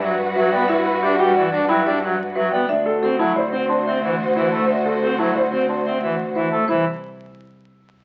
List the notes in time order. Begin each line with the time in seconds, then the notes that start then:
Already playing: G2 F#4 B4
0.02 F#3 E5
0.36 F#3 F#4 B4 E5
0.52 B3 D5 G5
0.68 E4 E5
0.86 B4
1.02 D4 G4 E5
1.19 G3 F#4 G5
1.35 E3 D5
1.52 D4
1.69 F#3 E4 G5 B5
1.86 D4 G4 D5 E5
2.02 F#3 E5
2.35 F#3 F#4 B4 E5
2.52 B3 D5 G5
2.69 D2 D4 F#4 C5 E5
2.86 A4
3.03 C4 F#4 A4
3.19 F#3 E4 A5
3.36 C5 D5
3.52 C4
3.69 D4 A5 C6
3.86 C4 E5
4.02 E3 E5
4.36 E3 E4 C5 E5
4.52 A3 A5
4.69 D4 E5
4.85 A4
5.02 C4 F#4 A4
5.19 F#3 E4 A5
5.35 C5 D5
5.52 C4
5.69 D4 A5 C6
5.86 C4 E5
6.02 E3 E5
6.35 E3 E4 C5 E5
6.52 A3 A5
6.68 C2 E3 E4 C5 B5